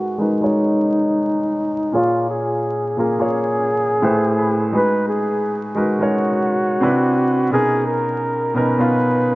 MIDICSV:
0, 0, Header, 1, 3, 480
1, 0, Start_track
1, 0, Tempo, 697674
1, 1335, Time_signature, 4, 2, 24, 8
1, 6433, End_track
2, 0, Start_track
2, 0, Title_t, "Flugelhorn"
2, 0, Program_c, 0, 56
2, 0, Note_on_c, 0, 66, 73
2, 112, Note_off_c, 0, 66, 0
2, 144, Note_on_c, 0, 63, 80
2, 1312, Note_off_c, 0, 63, 0
2, 1340, Note_on_c, 0, 65, 91
2, 1554, Note_off_c, 0, 65, 0
2, 1582, Note_on_c, 0, 68, 70
2, 2031, Note_off_c, 0, 68, 0
2, 2064, Note_on_c, 0, 68, 84
2, 3232, Note_off_c, 0, 68, 0
2, 3267, Note_on_c, 0, 71, 95
2, 3478, Note_off_c, 0, 71, 0
2, 3499, Note_on_c, 0, 68, 68
2, 3863, Note_off_c, 0, 68, 0
2, 3980, Note_on_c, 0, 66, 77
2, 5150, Note_off_c, 0, 66, 0
2, 5181, Note_on_c, 0, 68, 105
2, 5395, Note_off_c, 0, 68, 0
2, 5418, Note_on_c, 0, 70, 72
2, 5893, Note_on_c, 0, 71, 80
2, 5904, Note_off_c, 0, 70, 0
2, 6433, Note_off_c, 0, 71, 0
2, 6433, End_track
3, 0, Start_track
3, 0, Title_t, "Felt piano"
3, 0, Program_c, 1, 0
3, 0, Control_c, 1, 64, 127
3, 0, Note_on_c, 1, 56, 62
3, 0, Note_on_c, 1, 63, 60
3, 0, Note_on_c, 1, 66, 57
3, 0, Note_on_c, 1, 70, 60
3, 0, Note_on_c, 1, 71, 72
3, 101, Note_off_c, 1, 56, 0
3, 104, Note_off_c, 1, 63, 0
3, 106, Note_off_c, 1, 66, 0
3, 109, Note_off_c, 1, 70, 0
3, 112, Note_off_c, 1, 71, 0
3, 123, Note_on_c, 1, 56, 63
3, 131, Note_on_c, 1, 63, 57
3, 134, Note_on_c, 1, 66, 51
3, 139, Note_on_c, 1, 70, 54
3, 144, Note_on_c, 1, 71, 69
3, 271, Note_off_c, 1, 56, 0
3, 278, Note_off_c, 1, 63, 0
3, 281, Note_off_c, 1, 66, 0
3, 282, Note_on_c, 1, 56, 61
3, 283, Note_off_c, 1, 70, 0
3, 285, Note_off_c, 1, 71, 0
3, 288, Note_on_c, 1, 63, 54
3, 292, Note_on_c, 1, 66, 57
3, 296, Note_on_c, 1, 70, 56
3, 303, Note_on_c, 1, 73, 73
3, 1180, Note_off_c, 1, 56, 0
3, 1183, Note_off_c, 1, 63, 0
3, 1185, Note_off_c, 1, 66, 0
3, 1187, Note_off_c, 1, 70, 0
3, 1190, Note_off_c, 1, 73, 0
3, 1323, Note_on_c, 1, 46, 65
3, 1327, Note_on_c, 1, 58, 63
3, 1334, Note_on_c, 1, 65, 57
3, 1336, Note_on_c, 1, 68, 59
3, 1343, Control_c, 1, 64, 0
3, 1344, Note_on_c, 1, 73, 63
3, 1462, Control_c, 1, 64, 127
3, 2022, Note_off_c, 1, 46, 0
3, 2023, Note_off_c, 1, 58, 0
3, 2027, Note_off_c, 1, 65, 0
3, 2028, Note_off_c, 1, 68, 0
3, 2032, Note_off_c, 1, 73, 0
3, 2041, Note_on_c, 1, 46, 59
3, 2049, Note_on_c, 1, 58, 58
3, 2054, Note_on_c, 1, 65, 52
3, 2059, Note_on_c, 1, 68, 56
3, 2062, Note_on_c, 1, 70, 67
3, 2181, Note_off_c, 1, 46, 0
3, 2186, Note_off_c, 1, 58, 0
3, 2188, Note_off_c, 1, 65, 0
3, 2192, Note_on_c, 1, 46, 65
3, 2194, Note_off_c, 1, 68, 0
3, 2196, Note_on_c, 1, 58, 55
3, 2198, Note_on_c, 1, 65, 59
3, 2204, Note_off_c, 1, 70, 0
3, 2204, Note_on_c, 1, 68, 65
3, 2211, Note_on_c, 1, 73, 69
3, 2765, Note_on_c, 1, 45, 90
3, 2767, Note_off_c, 1, 46, 0
3, 2769, Note_off_c, 1, 58, 0
3, 2769, Note_on_c, 1, 57, 81
3, 2770, Note_off_c, 1, 65, 0
3, 2773, Note_off_c, 1, 68, 0
3, 2773, Note_on_c, 1, 79, 75
3, 2774, Note_on_c, 1, 76, 73
3, 2776, Note_off_c, 1, 73, 0
3, 2779, Note_on_c, 1, 71, 80
3, 2783, Control_c, 1, 64, 0
3, 2783, Note_on_c, 1, 72, 92
3, 2885, Control_c, 1, 64, 127
3, 2998, Note_off_c, 1, 76, 0
3, 3019, Note_on_c, 1, 83, 59
3, 3232, Note_off_c, 1, 45, 0
3, 3234, Note_off_c, 1, 57, 0
3, 3236, Note_off_c, 1, 79, 0
3, 3239, Note_off_c, 1, 71, 0
3, 3240, Note_off_c, 1, 83, 0
3, 3241, Note_off_c, 1, 72, 0
3, 3248, Note_on_c, 1, 56, 65
3, 3253, Note_on_c, 1, 63, 62
3, 3256, Note_on_c, 1, 66, 62
3, 3263, Note_on_c, 1, 68, 58
3, 3266, Control_c, 1, 64, 0
3, 3266, Note_on_c, 1, 71, 72
3, 3363, Control_c, 1, 64, 127
3, 3944, Note_off_c, 1, 56, 0
3, 3947, Note_off_c, 1, 63, 0
3, 3948, Note_off_c, 1, 66, 0
3, 3952, Note_off_c, 1, 68, 0
3, 3953, Note_off_c, 1, 71, 0
3, 3956, Note_on_c, 1, 56, 65
3, 3961, Note_on_c, 1, 63, 62
3, 3966, Note_on_c, 1, 66, 55
3, 3970, Note_on_c, 1, 70, 60
3, 3977, Note_on_c, 1, 71, 69
3, 4111, Note_off_c, 1, 56, 0
3, 4114, Note_off_c, 1, 63, 0
3, 4116, Note_off_c, 1, 66, 0
3, 4119, Note_off_c, 1, 70, 0
3, 4122, Note_off_c, 1, 71, 0
3, 4124, Note_on_c, 1, 56, 62
3, 4131, Note_on_c, 1, 63, 64
3, 4136, Note_on_c, 1, 66, 55
3, 4141, Note_on_c, 1, 70, 59
3, 4147, Note_on_c, 1, 73, 75
3, 4682, Note_on_c, 1, 48, 89
3, 4684, Note_on_c, 1, 60, 81
3, 4692, Note_on_c, 1, 62, 87
3, 4693, Note_off_c, 1, 56, 0
3, 4696, Note_off_c, 1, 63, 0
3, 4697, Note_on_c, 1, 64, 81
3, 4699, Note_off_c, 1, 66, 0
3, 4701, Note_off_c, 1, 70, 0
3, 4701, Note_on_c, 1, 71, 102
3, 4704, Note_off_c, 1, 73, 0
3, 4706, Control_c, 1, 64, 0
3, 4833, Control_c, 1, 64, 127
3, 5150, Note_off_c, 1, 48, 0
3, 5151, Note_off_c, 1, 60, 0
3, 5155, Note_off_c, 1, 62, 0
3, 5158, Note_off_c, 1, 64, 0
3, 5160, Note_off_c, 1, 71, 0
3, 5163, Note_on_c, 1, 47, 63
3, 5169, Note_on_c, 1, 59, 62
3, 5175, Note_on_c, 1, 61, 59
3, 5180, Note_on_c, 1, 63, 60
3, 5185, Control_c, 1, 64, 0
3, 5185, Note_on_c, 1, 70, 75
3, 5313, Control_c, 1, 64, 127
3, 5862, Note_off_c, 1, 47, 0
3, 5865, Note_off_c, 1, 59, 0
3, 5867, Note_off_c, 1, 61, 0
3, 5870, Note_off_c, 1, 63, 0
3, 5873, Note_off_c, 1, 70, 0
3, 5878, Note_on_c, 1, 47, 67
3, 5884, Note_on_c, 1, 59, 55
3, 5886, Note_on_c, 1, 61, 55
3, 5891, Note_on_c, 1, 63, 58
3, 5898, Note_on_c, 1, 70, 70
3, 6029, Note_off_c, 1, 47, 0
3, 6033, Note_off_c, 1, 59, 0
3, 6037, Note_off_c, 1, 61, 0
3, 6039, Note_off_c, 1, 63, 0
3, 6039, Note_on_c, 1, 47, 73
3, 6043, Note_off_c, 1, 70, 0
3, 6044, Note_on_c, 1, 59, 59
3, 6047, Note_on_c, 1, 61, 62
3, 6053, Note_on_c, 1, 63, 57
3, 6058, Note_on_c, 1, 65, 78
3, 6433, Note_off_c, 1, 47, 0
3, 6433, Note_off_c, 1, 59, 0
3, 6433, Note_off_c, 1, 61, 0
3, 6433, Note_off_c, 1, 63, 0
3, 6433, Note_off_c, 1, 65, 0
3, 6433, End_track
0, 0, End_of_file